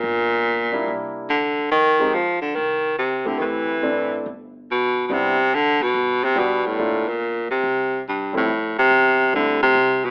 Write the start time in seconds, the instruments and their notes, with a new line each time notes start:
Already playing: baritone saxophone A#2
0.03 upright bass G1
0.72 grand piano G3 A#3 D4 E4
0.88 upright bass C2
1.30 baritone saxophone D3
1.59 muted upright bass stroke
1.72 upright bass F2, baritone saxophone D#3
1.99 grand piano G#3 C4 D#4 G4
2.14 baritone saxophone F3
2.41 baritone saxophone D3
2.55 upright bass C2, baritone saxophone D#3
2.99 baritone saxophone C3
3.25 upright bass C#2, baritone saxophone D3, grand piano A3 C4 E4 G4
3.39 upright bass D2, baritone saxophone D#3 E3
3.82 upright bass A1, grand piano A3 C4 D4 E4
4.26 upright bass G1
4.71 baritone saxophone B2
5.07 upright bass C2, baritone saxophone B2, grand piano G3 B3 D4
5.11 baritone saxophone C3, grand piano E4
5.54 baritone saxophone D3
5.80 baritone saxophone B2, muted upright bass stroke
5.94 upright bass G1
6.24 baritone saxophone C3
6.36 baritone saxophone B2, grand piano G3 B3 D4 G4
6.65 baritone saxophone A2, muted upright bass stroke
6.78 upright bass G1, grand piano A3 A#3 D4 F4
7.08 baritone saxophone A#2
7.49 baritone saxophone C3, muted upright bass stroke
7.64 upright bass C2
8.08 baritone saxophone G2
8.33 grand piano F2 G3 A3 C4 E4, baritone saxophone A2
8.48 upright bass F2
8.78 baritone saxophone C3
8.90 upright bass E2
9.33 upright bass D2, baritone saxophone D3, grand piano G3 A3 C4 E4
9.63 baritone saxophone C3
9.75 upright bass C2
10.05 baritone saxophone B2